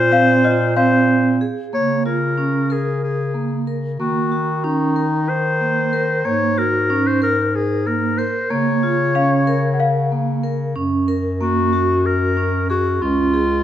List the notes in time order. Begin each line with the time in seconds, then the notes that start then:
Already playing: A#2 C5
0.12 C4 F5
0.44 F4 D#5
0.76 C4 C5 F5
1.41 G#4
1.73 C#3 A#3 C#5
2.06 F4 A#4
2.38 C#4
2.70 G#4 A#4
3.04 G#4
3.34 A#3
3.67 A#4
3.99 D#3 A#3 F#4
4.32 F#4
4.64 C#4 D#4
4.96 A#4
5.29 C5
5.61 A#3
5.93 A#4
6.25 G#2 A#3 C#5
6.58 F#4 A#4
6.90 C#4
7.07 C5
7.22 A#4
7.55 G#4
7.87 A#3 A#4
8.18 A#4 C5
8.50 C#3 A#3 C#5
8.83 F4
9.15 C#4 F5
9.47 A#4
9.74 F#5
9.80 F5
10.12 A#3
10.44 A#4
10.76 F#2 C#4
11.08 A#4
11.41 A#3 F#4
11.73 F#4
12.06 A#4
12.37 C#4
12.70 F#4 G#4
13.01 C#2 C#4 F4
13.34 G#4